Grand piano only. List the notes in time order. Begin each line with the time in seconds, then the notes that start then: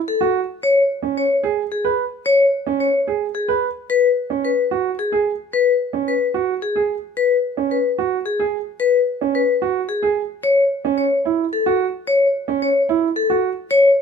0.21 F#4
1.03 C#4
1.43 G#4
1.85 B4
2.67 C#4
3.07 G#4
3.48 B4
4.30 C#4
4.71 F#4
5.12 G#4
5.93 C#4
6.34 F#4
6.76 G#4
7.57 C#4
7.98 F#4
8.39 G#4
9.21 C#4
9.62 F#4
10.03 G#4
10.85 C#4
11.25 E4
11.66 F#4
12.48 C#4
12.89 E4
13.30 F#4